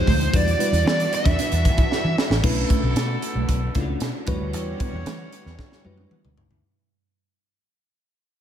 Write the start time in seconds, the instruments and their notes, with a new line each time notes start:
Already playing: string section F3 G#3 C4 D#4, fm electric piano G#3 D#4 F4 G4 C5, lead electric guitar C5
0.07 fingered electric bass D2, clean electric guitar A3, kick, open hi-hat
0.21 closed hi-hat
0.33 fingered electric bass E2, string section E3 B3 D4 F#4, fm electric piano G3 D4 E4 F#4 B4, lead electric guitar D5, kick, closed hi-hat
0.47 muted clean electric guitar stroke, closed hi-hat
0.59 fm electric piano G3 D4 E4 F#4 B4, clean electric guitar B3, closed hi-hat
0.72 fingered electric bass E2, clean electric guitar D4, closed hi-hat
0.85 fingered electric bass E3, clean electric guitar B3, lead electric guitar D5, snare
1.00 muted clean electric guitar stroke, closed hi-hat
1.13 lead electric guitar E5, closed hi-hat
1.25 fingered electric bass E2, clean electric guitar D4, kick, snare, closed hi-hat
1.39 clean electric guitar D4, closed hi-hat
1.52 fingered electric bass E2, muted clean electric guitar stroke, closed hi-hat
1.65 fingered electric bass E3, kick, closed hi-hat
1.77 clean electric guitar E4, kick, closed hi-hat
1.90 clean electric guitar E4, snare
2.04 fingered electric bass E3
2.17 muted clean electric guitar stroke, snare
2.30 fingered electric bass A1, clean electric guitar D4, snare
2.43 fingered electric bass B1, string section D3 A3 B3, fm electric piano A3 C#4 D4 E4 B4, horn section E4 F#4 A4, kick, crash
2.57 muted clean electric guitar stroke
2.69 clean electric guitar A3, kick, closed hi-hat
2.83 fingered electric bass B1, clean electric guitar B3
2.95 fingered electric bass B2, clean electric guitar A3, snare, closed hi-hat
3.10 muted clean electric guitar stroke
3.22 closed hi-hat
3.35 fingered electric bass B1, clean electric guitar A3
3.49 fingered electric bass B1, clean electric guitar B3, kick, closed hi-hat
3.62 muted clean electric guitar stroke
3.75 fingered electric bass C#2, fm electric piano A3 C#4 D4 E4 F4, kick, snare, closed hi-hat
3.82 fm electric piano F#4
3.88 clean electric guitar B3
4.00 fingered electric bass B2, snare, closed hi-hat
4.26 fingered electric bass E2, string section E3 G3 F#5, fm electric piano G3 D4 E4 F#4 B4, clean electric guitar A3, horn section C#4 G4 C#5, kick, closed hi-hat
4.40 fingered electric bass D2
4.53 fingered electric bass E2, closed hi-hat
4.67 muted clean electric guitar stroke
4.80 clean electric guitar B3, kick, closed hi-hat
4.93 fingered electric bass E2, clean electric guitar D4
5.06 fingered electric bass E3, clean electric guitar A3, snare, closed hi-hat
5.20 muted clean electric guitar stroke
5.32 closed hi-hat
5.46 fingered electric bass E2, clean electric guitar B3, snare
5.59 clean electric guitar D4, kick, snare
5.72 muted clean electric guitar stroke, snare
5.85 fingered electric bass F#2, fm electric piano G3 D4 E4 F#4 B4, high tom
5.98 clean electric guitar D4, high tom
6.11 clean electric guitar B3, mid tom
6.25 fingered electric bass D2, mid tom
6.38 fingered electric bass C#2, muted clean electric guitar stroke, floor tom
6.51 fingered electric bass D2, clean electric guitar E4, floor tom